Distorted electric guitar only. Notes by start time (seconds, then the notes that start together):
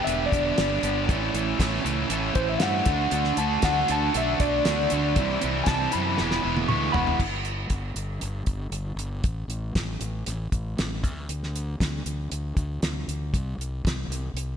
0.06 G2 D3 G3 B3 D4 G4
0.31 G2 D3 G3 B3 D4 G4
0.56 G2 D3 G3 B3 D4 G4
0.82 G2 D3 G3 B3 D4 G4
1.06 A2 E3 A3 C#4 A4
1.33 A2 E3 A3 C#4 A4
1.58 A2 E3 A3 C#4 A4
1.84 A2 E3 A3 C#4 A4
2.11 A2 E3 A3 C#4 A4
2.35 A2 E3 A3 C#4 A4
2.62 A2 E3 A3 C#4 A4
2.88 D3 A3 D4 F#4
3.14 D3 A3 D4 F#4
3.40 D3 A3 D4 F#4
3.63 D3 A3 D4 F#4
3.89 D3 A3 D4 F#4
4.16 D3 A3 D4 F#4
4.40 D3 A3 D4 F#4
4.67 D3 A3 D4 F#4
4.92 D3 A3 D4 F#4
5.17 C3 E3 G3 C4 E4
5.43 C3 E3 G3 C4 E4
5.69 C3 E3 G3 C4 E4
5.93 C3 E3 G3 C4 E4
6.19 E2 B2 E3 G#3 B3 E4
6.43 E2 B2 E3 G#3 B3 E4
6.69 E2 B2 E3 G#3 B3 E4
6.94 E2 B2 E3 G#3 B3 E4